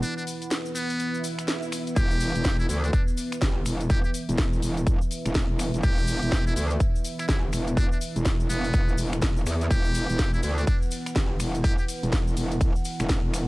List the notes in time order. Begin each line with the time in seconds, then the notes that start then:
Already playing: E3 B3 B4 F#5
0.03 D4, closed hi-hat, cabasa
0.17 D4, cabasa
0.27 open hi-hat, cabasa
0.42 closed hi-hat, cabasa
0.51 snare, closed hi-hat, cabasa
0.65 cabasa
0.75 B3, open hi-hat, cabasa
0.90 closed hi-hat, cabasa
0.99 closed hi-hat, swell, cabasa
1.14 cabasa
1.24 open hi-hat, cabasa
1.39 finger snap, closed hi-hat, cabasa
1.48 snare, closed hi-hat, cabasa
1.62 cabasa
1.72 finger snap, open hi-hat, cabasa
1.87 closed hi-hat, cabasa
1.96 E1 G4 E5, kick, closed hi-hat, cabasa
2.11 cabasa
2.20 open hi-hat, cabasa
2.35 E1, closed hi-hat, cabasa
2.44 kick, snare, closed hi-hat, cabasa
2.60 E4, cabasa
2.69 D2 E4, open hi-hat, cabasa
2.84 D4, closed hi-hat, cabasa
2.93 D4, kick, closed hi-hat, cabasa
3.08 cabasa
3.17 open hi-hat, cabasa
3.32 finger snap, closed hi-hat, cabasa
3.42 G1, kick, snare, closed hi-hat, cabasa
3.66 E1, finger snap, open hi-hat, cabasa
3.80 closed hi-hat, cabasa
3.90 G4, kick, closed hi-hat, cabasa
4.04 G4, cabasa
4.14 open hi-hat, cabasa
4.29 E1, closed hi-hat, cabasa
4.38 kick, snare, closed hi-hat, cabasa
4.53 cabasa
4.62 E1, open hi-hat, cabasa
4.77 closed hi-hat, cabasa
4.87 kick, closed hi-hat, cabasa
5.02 cabasa
5.11 open hi-hat, cabasa
5.26 E1, finger snap, closed hi-hat, cabasa
5.34 kick, snare, closed hi-hat, cabasa
5.50 E1
5.59 finger snap, open hi-hat, cabasa
5.74 E1, closed hi-hat, cabasa
5.83 E1 G4, kick, closed hi-hat, cabasa
5.98 cabasa
6.07 open hi-hat, cabasa
6.22 E1, closed hi-hat, cabasa
6.32 kick, snare, closed hi-hat, cabasa
6.47 E4, cabasa
6.56 D2 E4, open hi-hat, cabasa
6.70 closed hi-hat, cabasa
6.80 kick, closed hi-hat, cabasa
6.95 cabasa
7.04 open hi-hat, cabasa
7.19 E4, finger snap, closed hi-hat, cabasa
7.29 G1 E4, kick, snare, closed hi-hat, cabasa
7.53 E1, finger snap, open hi-hat, cabasa
7.67 closed hi-hat, cabasa
7.77 D4, kick, closed hi-hat, cabasa
7.92 D4, cabasa
8.01 open hi-hat, cabasa
8.16 E1, closed hi-hat, cabasa
8.25 kick, snare, closed hi-hat, cabasa
8.40 cabasa
8.50 E1 B3, open hi-hat, cabasa
8.65 closed hi-hat, cabasa
8.73 E1, kick, closed hi-hat, cabasa
8.88 cabasa
8.98 E1, open hi-hat, cabasa
9.13 finger snap, closed hi-hat, cabasa
9.22 E1, kick, snare, closed hi-hat, cabasa
9.37 cabasa
9.46 E2, finger snap, open hi-hat, cabasa
9.61 closed hi-hat, cabasa
9.71 E1 G4 F#5, kick, closed hi-hat, ride, cabasa
9.85 cabasa
9.94 open hi-hat, ride, cabasa
10.09 E1, closed hi-hat, cabasa
10.19 kick, snare, closed hi-hat, ride, cabasa
10.34 E4, cabasa
10.43 D2 E4, open hi-hat, ride, cabasa
10.58 D4, closed hi-hat, cabasa
10.67 D4, kick, closed hi-hat, ride, cabasa
10.82 cabasa
10.91 open hi-hat, ride, cabasa
11.06 finger snap, closed hi-hat, cabasa
11.16 G1, kick, snare, closed hi-hat, ride, cabasa
11.40 E1, finger snap, open hi-hat, ride, cabasa
11.55 closed hi-hat, cabasa
11.64 G4, kick, closed hi-hat, ride, cabasa
11.78 G4, cabasa
11.88 open hi-hat, ride, cabasa
12.03 E1, closed hi-hat, cabasa
12.12 kick, snare, closed hi-hat, ride, cabasa
12.27 cabasa
12.37 E1, open hi-hat, ride, cabasa
12.51 closed hi-hat, cabasa
12.61 kick, closed hi-hat, ride, cabasa
12.76 cabasa
12.85 open hi-hat, ride, cabasa
12.99 E1, finger snap, closed hi-hat, cabasa
13.09 kick, snare, closed hi-hat, ride, cabasa
13.24 E1
13.34 finger snap, open hi-hat, ride, cabasa